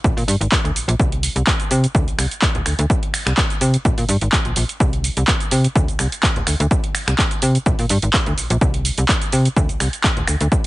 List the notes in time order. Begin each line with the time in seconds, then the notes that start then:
0.04 A#1, kick, shaker
0.17 A#2, open hi-hat, shaker
0.28 G2, open hi-hat, shaker
0.41 G#1, closed hi-hat, shaker
0.52 kick, clap, shaker
0.64 D2, closed hi-hat
0.75 A#1, open hi-hat, shaker
0.88 A#1, closed hi-hat, shaker
0.99 C2, kick, shaker
1.12 closed hi-hat
1.23 open hi-hat, shaker
1.36 C2, closed hi-hat, shaker
1.47 kick, clap, shaker
1.60 closed hi-hat, shaker
1.71 C3, open hi-hat, shaker
1.84 closed hi-hat, shaker
1.95 D2, kick, shaker
2.08 C2, closed hi-hat, shaker
2.18 C2, finger snap, open hi-hat, shaker
2.31 closed hi-hat, shaker
2.42 kick, clap, shaker
2.55 D1, closed hi-hat
2.66 D2, finger snap, open hi-hat, shaker
2.79 D2, closed hi-hat, shaker
2.90 kick, shaker
3.03 closed hi-hat
3.14 finger snap, open hi-hat, shaker
3.26 C2, finger snap, clap, closed hi-hat, shaker
3.37 kick, clap, shaker
3.50 closed hi-hat, shaker
3.61 C3, open hi-hat, shaker
3.74 closed hi-hat, shaker
3.85 A#1, kick, shaker
3.98 A#2, open hi-hat, shaker
4.09 G2, open hi-hat, shaker
4.21 G#1, closed hi-hat, shaker
4.32 kick, clap, shaker
4.45 A#1, closed hi-hat
4.56 A#1, open hi-hat, shaker
4.69 closed hi-hat, shaker
4.80 C2, kick, shaker
4.93 closed hi-hat
5.04 open hi-hat, shaker
5.17 C2, closed hi-hat, shaker
5.28 kick, clap, shaker
5.40 closed hi-hat, shaker
5.51 C3, open hi-hat, shaker
5.64 closed hi-hat, shaker
5.76 D2, kick, shaker
5.88 C2, closed hi-hat, shaker
5.99 C2, finger snap, open hi-hat, shaker
6.12 closed hi-hat, shaker
6.23 kick, clap, shaker
6.36 D1, closed hi-hat
6.47 D2, finger snap, open hi-hat, shaker
6.60 D2, closed hi-hat, shaker
6.71 kick, shaker
6.84 closed hi-hat
6.95 finger snap, open hi-hat, shaker
7.08 C2, finger snap, clap, closed hi-hat, shaker
7.19 kick, clap, shaker
7.31 closed hi-hat, shaker
7.42 C3, open hi-hat, shaker
7.55 closed hi-hat, shaker
7.66 A#1, kick, shaker
7.79 A#2, open hi-hat, shaker
7.89 G2, open hi-hat, shaker
8.02 G#1, closed hi-hat, shaker
8.13 kick, clap, shaker
8.26 D2, closed hi-hat
8.38 A#1, open hi-hat, shaker
8.50 A#1, closed hi-hat, shaker
8.61 C2, kick, shaker
8.74 closed hi-hat
8.85 open hi-hat, shaker
8.98 C2, closed hi-hat, shaker
9.09 kick, clap, shaker
9.22 closed hi-hat, shaker
9.32 C3, open hi-hat, shaker
9.45 closed hi-hat, shaker
9.56 D2, kick, shaker
9.69 C2, closed hi-hat, shaker
9.80 C2, finger snap, open hi-hat, shaker
9.93 closed hi-hat, shaker
10.04 kick, clap, shaker
10.17 D1, closed hi-hat
10.27 D2, finger snap, open hi-hat, shaker
10.41 D2, closed hi-hat, shaker
10.52 kick, shaker